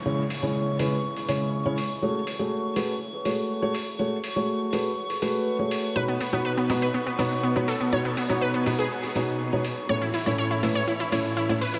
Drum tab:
HH |--o---o--oo---o-|--o---o---o---o-|--o---o--oo---o-|--o---o---o---o-|

HH |--o---o--oo---o-|--o---o---o---o-|